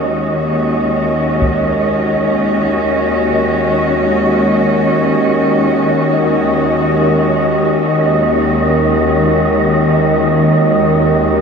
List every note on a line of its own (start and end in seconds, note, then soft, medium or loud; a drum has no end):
0.00 11.41 D#2 medium
0.00 11.41 D#3 medium
0.00 11.41 G#3 medium
0.00 11.41 C#4 medium
0.00 11.41 F#4 medium
0.00 11.41 D#5 medium
1.42 taiko medium